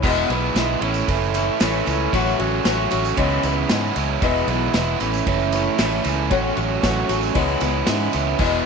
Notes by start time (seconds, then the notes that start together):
0.03 E1 E2 B2 E3 G#3 B3 E4, kick, crash, tambourine
0.16 tambourine
0.28 B1 E3 G#3 B3 E4, ride
0.55 B1 E3 G#3 B3 E4, snare, ride, tambourine
0.80 A1 A2 E3 A3 C#4 E4, ride
0.94 tambourine
1.07 F#1 A2 E3 A3 C#4 E4, kick, ride, tambourine
1.21 tambourine
1.34 A3 C#4 E4, ride, tambourine
1.59 A1 E3 A3 C#4 E4, snare, ride, tambourine
1.74 tambourine
1.86 C#2 A3 C#4 E4, ride, tambourine
2.12 A1 A2 F#3 A3 C#4 F#4, kick, ride, tambourine
2.26 tambourine
2.38 A1 A3 C#4 F#4, ride
2.64 A1 F#3 A3 C#4 F#4, snare, ride, tambourine
2.91 A1 A3 C#4 F#4, ride, tambourine
3.05 tambourine
3.17 C#2 C#3 E3 G#3 B3 C#4 E4, kick, ride, tambourine
3.31 tambourine
3.43 C#2 G#3 B3 E4, ride, tambourine
3.68 G#2 E3 G#3 B3 C#4 E4, snare, ride, tambourine
3.84 tambourine
3.95 C#2 C#4 E4, ride, tambourine
3.99 G#3
4.22 E1 E2 B2 E3 G#3 B3 E4, kick, ride, tambourine
4.35 tambourine
4.47 B1 G#3 B3 E4, ride
4.52 E3
4.74 E1 E3 G#3 B3, snare, ride, tambourine
4.78 E4
5.00 A1 A2 E3 A3 C#4 E4, ride, tambourine
5.13 tambourine
5.25 F#1 A2 E3 A3 C#4 E4, kick, ride, tambourine
5.39 tambourine
5.52 A3 C#4 E4, ride, tambourine
5.78 A1 E3 A3 C#4 E4, snare, ride, tambourine
5.91 tambourine
6.04 C#2 A3 C#4 E4, ride, tambourine
6.31 A1 A2 F#3 A3 C#4 F#4, kick, ride, tambourine
6.57 A1 A3 C#4 F#4, ride
6.83 A1 F#3 A3 C#4 F#4, kick, snare, ride, tambourine
7.09 A1 A3 C#4 F#4, ride, tambourine
7.23 tambourine
7.34 C#2 C#3 E3 G#3 B3 C#4 E4, kick, ride, tambourine
7.48 tambourine
7.60 C#2 G#3 B3 E4, ride, tambourine
7.87 G#2 E3 G#3 B3 C#4 E4, snare, ride, tambourine
8.00 tambourine
8.13 C#2 C#4 E4, ride, tambourine
8.17 G#3
8.39 E1 E2 B2 E3 G#3 B3 E4, kick, crash, tambourine